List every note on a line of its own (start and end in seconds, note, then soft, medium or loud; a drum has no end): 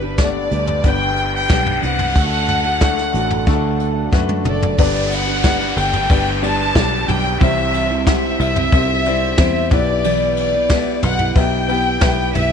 0.00 0.47 G1 loud
0.00 0.47 G2 medium
0.00 0.24 B3 medium
0.00 0.18 D4 medium
0.00 0.50 D4 soft
0.00 0.19 G4 medium
0.00 0.51 G4 medium
0.00 0.15 B4 medium
0.00 0.85 B4 medium
0.00 0.51 B4 medium
0.00 noise sweep medium
0.18 0.24 A3 medium
0.18 0.71 D4 medium
0.18 0.71 G4 medium
0.18 0.72 D5 medium
0.18 0.85 D5 medium
0.18 kick loud
0.18 snare loud
0.18 closed hi-hat medium
0.24 0.74 B3 medium
0.50 0.82 D2 medium
0.50 0.82 G3 medium
0.50 0.83 D4 medium
0.50 0.83 G4 medium
0.50 0.84 B4 medium
0.50 closed hi-hat medium
0.67 floor tom medium
0.84 1.46 G1 medium
0.84 1.48 G3 medium
0.84 1.37 B3 medium
0.84 1.37 D4 medium
0.84 1.50 D4 medium
0.84 1.49 G4 medium
0.84 1.37 G4 medium
0.84 1.50 B4 medium
0.84 1.37 B4 medium
0.84 1.34 G5 loud
0.84 kick loud
0.84 closed hi-hat medium
1.17 closed hi-hat medium
1.36 1.81 G5 loud
1.49 1.80 B1 medium
1.49 1.80 G3 medium
1.49 2.03 B3 medium
1.49 1.81 D4 medium
1.49 2.03 D4 medium
1.49 1.82 G4 medium
1.49 2.03 G4 medium
1.49 2.03 B4 medium
1.49 1.83 B4 medium
1.49 kick loud
1.49 snare loud
1.49 closed hi-hat medium
1.66 floor tom medium
1.82 2.14 C2 medium
1.82 2.14 G3 medium
1.82 2.14 D4 medium
1.82 2.16 G4 medium
1.82 2.16 B4 medium
1.82 4.10 F#5 loud
1.82 closed hi-hat medium
1.99 floor tom medium
2.15 3.10 D2 loud
2.15 3.11 D3 medium
2.15 2.64 A3 medium
2.15 2.69 A3 medium
2.15 2.65 D4 medium
2.15 2.69 D4 medium
2.15 2.64 F#4 medium
2.15 2.69 F#4 medium
2.15 2.69 A4 medium
2.15 2.63 A4 medium
2.15 kick loud
2.15 closed hi-hat medium
2.48 closed hi-hat medium
2.48 floor tom medium
2.64 3.13 D4 soft
2.64 3.13 F#4 soft
2.64 3.14 A4 medium
2.81 3.34 A3 medium
2.81 3.34 D4 medium
2.81 3.35 F#4 medium
2.81 3.35 A4 medium
2.81 kick loud
2.81 snare loud
2.81 closed hi-hat medium
2.98 snare soft
2.98 closed hi-hat soft
3.13 3.45 A1 medium
3.13 3.45 A3 medium
3.13 3.46 D4 medium
3.13 3.46 F#4 medium
3.13 3.47 A4 medium
3.13 closed hi-hat medium
3.31 floor tom medium
3.46 4.09 D2 loud
3.46 6.96 D3 medium
3.46 4.00 A3 medium
3.46 4.10 A3 medium
3.46 4.00 D4 medium
3.46 4.12 D4 medium
3.46 4.00 F#4 medium
3.46 4.12 F#4 medium
3.46 4.00 A4 medium
3.46 4.13 A4 medium
3.46 kick loud
3.46 closed hi-hat medium
3.80 closed hi-hat medium
4.11 4.43 F#2 medium
4.11 4.43 A3 medium
4.11 4.66 A3 medium
4.11 4.44 D4 medium
4.11 4.66 D4 medium
4.11 4.45 F#4 medium
4.11 4.66 F#4 medium
4.11 4.46 A4 medium
4.11 4.66 B4 medium
4.11 kick loud
4.11 snare medium
4.29 high tom medium
4.44 4.76 F#1 medium
4.44 4.77 A3 medium
4.44 4.77 D4 medium
4.44 4.78 F#4 medium
4.44 4.79 A4 medium
4.44 4.77 D5 medium
4.44 mid tom medium
4.62 floor tom medium
4.78 5.73 G1 loud
4.78 5.74 G2 medium
4.78 5.27 G3 medium
4.78 5.32 B3 medium
4.78 5.28 D4 loud
4.78 5.32 D4 medium
4.78 5.26 G4 loud
4.78 5.32 G4 medium
4.78 5.25 B4 loud
4.78 5.32 B4 medium
4.78 5.09 D5 medium
4.78 5.32 D5 loud
4.78 kick loud
4.78 crash medium
4.78 downlifter medium
5.11 5.78 F#5 medium
5.11 ride medium
5.26 5.94 D4 soft
5.26 5.93 G4 medium
5.26 5.91 B4 medium
5.43 5.97 B3 medium
5.43 5.97 D4 medium
5.43 5.97 G4 medium
5.43 5.97 B4 medium
5.43 5.97 D5 medium
5.43 kick loud
5.43 snare loud
5.43 ride medium
5.61 snare soft
5.76 6.07 G1 medium
5.76 6.39 G5 medium
5.76 ride medium
5.92 6.41 D4 soft
5.92 6.42 G4 medium
5.92 6.42 B4 medium
5.92 floor tom medium
6.09 6.72 G1 loud
6.09 6.36 B3 medium
6.09 6.36 D4 medium
6.09 6.36 G4 medium
6.09 6.37 B4 medium
6.09 6.37 D5 medium
6.09 kick loud
6.09 ride medium
6.42 6.73 G3 medium
6.42 6.69 B3 medium
6.42 6.69 D4 medium
6.42 6.75 D4 medium
6.42 6.69 G4 medium
6.42 6.75 G4 medium
6.42 6.70 B4 medium
6.42 6.76 B4 medium
6.42 6.69 D5 medium
6.42 7.09 A5 loud
6.42 ride medium
6.75 7.06 B1 medium
6.75 7.07 G3 medium
6.75 7.28 B3 medium
6.75 7.28 D4 medium
6.75 7.07 D4 medium
6.75 7.29 G4 medium
6.75 7.08 G4 medium
6.75 7.29 B4 medium
6.75 7.09 B4 medium
6.75 7.29 D5 medium
6.75 kick loud
6.75 snare loud
6.75 ride medium
7.08 7.39 B1 medium
7.08 7.39 G3 medium
7.08 7.41 D4 medium
7.08 7.41 G4 medium
7.08 7.41 B4 medium
7.08 7.42 G5 loud
7.08 floor tom medium
7.08 ride medium
7.40 8.36 C2 medium
7.40 7.90 C3 medium
7.40 8.36 C3 medium
7.40 7.90 E3 medium
7.40 7.90 G3 medium
7.40 7.94 C4 loud
7.40 7.90 C4 loud
7.40 7.94 E4 medium
7.40 7.89 E4 loud
7.40 7.95 G4 medium
7.40 7.89 C5 loud
7.40 7.95 C5 medium
7.40 8.03 E5 loud
7.40 7.95 E5 loud
7.40 kick loud
7.40 ride medium
7.74 ride medium
7.90 8.57 G3 medium
7.90 8.56 C4 medium
7.90 8.55 E4 medium
7.90 8.54 C5 medium
8.06 8.60 C4 medium
8.06 8.60 E4 medium
8.06 8.60 G4 medium
8.06 8.60 C5 medium
8.06 9.68 E5 loud
8.06 8.60 F#5 medium
8.06 kick loud
8.06 snare loud
8.06 ride medium
8.40 8.70 C2 loud
8.40 ride medium
8.55 9.04 G3 soft
8.55 9.05 C4 soft
8.55 9.05 E4 medium
8.55 9.05 C5 medium
8.55 floor tom medium
8.72 9.34 C2 loud
8.72 8.99 C4 medium
8.72 8.99 E4 medium
8.72 9.00 G4 medium
8.72 9.00 C5 medium
8.72 9.00 E5 medium
8.72 kick loud
8.72 ride medium
9.05 9.36 G3 medium
9.05 9.32 C4 medium
9.05 9.37 C4 medium
9.05 9.33 E4 medium
9.05 9.38 E4 medium
9.05 9.33 G4 medium
9.05 9.33 C5 medium
9.05 9.39 C5 medium
9.05 9.33 D5 medium
9.05 ride medium
9.37 9.69 E2 medium
9.37 9.71 G3 medium
9.37 9.71 C4 medium
9.37 9.72 C4 medium
9.37 9.70 E4 medium
9.37 9.71 E4 medium
9.37 9.71 G4 medium
9.37 9.72 C5 medium
9.37 9.72 E5 medium
9.37 kick loud
9.37 snare loud
9.37 ride medium
9.71 10.99 B1 medium
9.71 10.67 B2 medium
9.71 10.04 B3 medium
9.71 10.51 B3 medium
9.71 10.51 E4 medium
9.71 10.04 E4 medium
9.71 10.51 G4 medium
9.71 10.04 G4 medium
9.71 10.52 B4 medium
9.71 10.05 B4 medium
9.71 10.37 D5 loud
9.71 10.52 E5 medium
9.71 kick loud
9.71 floor tom medium
9.71 ride medium
10.04 10.54 B2 medium
10.04 10.54 E3 loud
10.04 10.54 B3 loud
10.04 10.53 E4 loud
10.04 10.53 G4 loud
10.04 10.52 B4 loud
10.04 ride medium
10.37 10.99 D5 loud
10.37 ride medium
10.53 11.20 B3 medium
10.53 11.20 E4 medium
10.53 11.19 G4 medium
10.53 11.18 B4 medium
10.69 11.23 B3 medium
10.69 11.24 E4 medium
10.69 11.24 G4 medium
10.69 11.24 B4 medium
10.69 11.24 E5 medium
10.69 kick loud
10.69 snare loud
10.69 ride medium
11.03 11.34 B1 loud
11.03 11.36 F#5 medium
11.03 floor tom medium
11.03 ride medium
11.19 11.67 B3 medium
11.19 11.68 E4 medium
11.19 11.69 G4 medium
11.19 11.69 B4 medium
11.19 floor tom medium
11.35 11.98 B1 loud
11.35 11.62 B3 medium
11.35 11.62 E4 medium
11.35 11.63 G4 medium
11.35 11.63 B4 medium
11.35 11.63 E5 medium
11.35 12.31 G5 loud
11.35 kick loud
11.35 ride medium
11.68 11.95 B3 medium
11.68 12.00 B3 medium
11.68 11.95 E4 medium
11.68 12.01 E4 medium
11.68 11.95 G4 medium
11.68 12.01 G4 medium
11.68 11.96 B4 medium
11.68 12.02 B4 medium
11.68 11.96 G5 medium
11.68 ride medium
12.01 12.32 B1 medium
12.01 12.32 B3 medium
12.01 12.52 B3 medium
12.01 12.52 E4 medium
12.01 12.33 E4 medium
12.01 12.52 G4 medium
12.01 12.34 G4 medium
12.01 12.52 B4 medium
12.01 12.35 B4 medium
12.01 12.52 E5 medium
12.01 kick loud
12.01 snare loud
12.01 ride medium
12.33 12.52 B1 medium
12.33 12.52 B3 medium
12.33 12.52 E4 medium
12.33 12.52 G4 medium
12.33 12.52 B4 medium
12.33 12.52 E5 medium
12.33 floor tom medium
12.33 ride medium